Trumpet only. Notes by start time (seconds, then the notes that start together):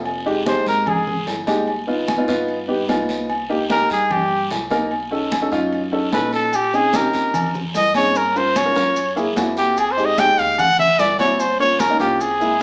0.48 C5
0.68 A#4
0.89 G#4
3.71 A#4
3.92 G#4
4.12 G4
6.13 B4
6.34 A4
6.55 G4
6.75 G#4
6.96 A#4
7.76 D#5
7.96 C#5
8.17 A#4
8.37 C5
8.57 C#5
9.58 G4
9.78 G#4
9.92 C5
10.05 D#5
10.19 G5
10.39 F5
10.59 F#5
10.79 E5
11.00 D5
11.20 C#5
11.40 C5
11.60 C#5
11.80 A#4
12.00 G4
12.21 G#4